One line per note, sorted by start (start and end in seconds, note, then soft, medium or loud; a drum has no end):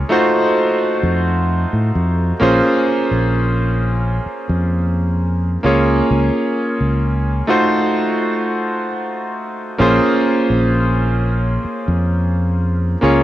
0.00 0.13 A#3 medium
0.00 0.12 C#4 medium
0.00 0.11 F4 medium
0.00 0.12 G#4 medium
0.00 0.12 C#5 medium
0.09 2.32 A3 medium
0.09 2.32 D#4 medium
0.09 2.33 F4 medium
0.09 2.33 F#4 medium
0.09 2.33 C5 loud
1.03 1.64 F2 medium
1.73 1.90 A2 medium
1.95 2.31 F2 loud
2.40 2.60 A#1 loud
2.40 5.55 A#3 medium
2.40 5.55 C#4 medium
2.40 5.55 F4 medium
2.40 5.56 G#4 medium
2.40 5.56 C5 loud
3.11 4.18 A#1 medium
4.26 muted fingered electric bass stroke soft
4.49 5.56 F2 medium
5.63 6.01 C#2 medium
5.63 7.39 A#3 medium
5.63 7.40 C#4 medium
5.63 7.40 F4 medium
5.63 7.41 G#4 medium
5.63 7.41 C#5 medium
6.11 6.29 C#2 loud
6.80 7.41 C#2 medium
7.47 8.87 A3 medium
7.47 8.87 D#4 medium
7.47 8.87 F4 medium
7.47 8.88 F#4 medium
7.47 8.88 C5 loud
9.78 9.98 A#1 loud
9.78 12.93 A#3 medium
9.78 12.94 C#4 medium
9.78 12.94 F4 medium
9.78 12.94 G#4 medium
9.78 12.95 C5 loud
10.50 11.57 A#1 medium
11.65 muted fingered electric bass stroke soft
11.88 12.95 F2 medium
13.01 13.23 C#2 medium
13.01 13.23 A#3 medium
13.01 13.23 C#4 medium
13.01 13.23 F4 medium
13.01 13.23 G#4 medium
13.01 13.23 C#5 medium